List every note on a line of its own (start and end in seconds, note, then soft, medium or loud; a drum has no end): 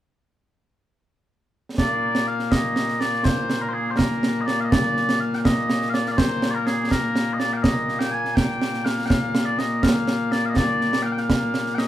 1.78 11.88 A#2 medium
1.78 11.88 A#3 medium
1.78 2.27 D5 medium
1.78 concert bass drum medium
1.78 snare medium
2.15 snare medium
2.27 2.51 F5 medium
2.39 snare soft
2.51 3.00 D#5 medium
2.51 concert bass drum medium
2.51 snare medium
2.76 snare medium
2.89 snare soft
3.00 3.24 D5 medium
3.00 snare medium
3.13 snare soft
3.24 3.62 C5 medium
3.24 concert bass drum medium
3.24 snare medium
3.50 snare medium
3.62 3.69 A#4 medium
3.69 3.73 C5 medium
3.73 3.91 G#4 medium
3.91 3.97 C5 medium
3.97 4.41 A#4 medium
3.97 concert bass drum medium
3.97 snare medium
4.23 snare medium
4.41 4.46 D#5 medium
4.46 4.60 D5 medium
4.46 snare medium
4.60 4.71 D#5 medium
4.60 4.64 F5 medium
4.71 5.20 D5 medium
4.71 concert bass drum medium
4.71 snare loud
4.97 snare soft
5.09 snare medium
5.20 5.35 F5 medium
5.33 5.38 G5 medium
5.33 snare soft
5.38 5.45 F5 medium
5.45 5.89 D#5 medium
5.45 concert bass drum medium
5.45 snare medium
5.70 snare medium
5.82 snare soft
5.89 5.94 F5 medium
5.94 6.08 D5 medium
5.94 snare medium
6.06 6.11 F5 medium
6.06 snare soft
6.11 6.18 D5 medium
6.18 6.50 C5 medium
6.18 concert bass drum medium
6.18 snare medium
6.42 snare medium
6.50 6.55 D5 medium
6.55 6.66 A#4 medium
6.66 6.91 G#4 medium
6.66 snare medium
6.91 7.33 A#4 medium
6.91 concert bass drum medium
6.91 snare medium
7.16 snare medium
7.33 7.39 D#5 medium
7.39 7.53 D5 medium
7.39 snare medium
7.53 7.62 F5 medium
7.53 7.57 G5 medium
7.62 7.99 D#5 medium
7.62 concert bass drum medium
7.62 snare medium
7.89 snare soft
7.99 8.11 G5 medium
7.99 snare medium
8.11 8.35 G#5 loud
8.25 snare soft
8.35 8.85 G5 loud
8.35 concert bass drum medium
8.35 snare medium
8.62 snare medium
8.74 snare soft
8.85 9.06 F5 medium
8.85 snare medium
8.98 snare soft
9.06 9.45 F5 medium
9.06 9.09 G5 medium
9.10 concert bass drum medium
9.10 snare loud
9.35 snare medium
9.45 9.58 D5 medium
9.58 9.83 D#5 medium
9.58 snare medium
9.83 10.31 F5 medium
9.83 concert bass drum medium
9.83 snare medium
10.07 snare medium
10.31 10.45 D5 medium
10.31 snare medium
10.45 10.56 D#5 medium
10.45 10.49 F5 medium
10.56 11.02 D5 loud
10.56 concert bass drum medium
10.56 snare medium
10.81 snare soft
10.93 snare medium
11.02 11.12 F5 medium
11.02 11.06 G5 medium
11.12 11.19 G5 medium
11.17 11.75 F5 loud
11.17 snare soft
11.30 concert bass drum soft
11.30 snare medium
11.54 snare medium
11.66 snare soft
11.75 11.88 D#5 medium
11.75 11.78 G5 medium
11.75 snare medium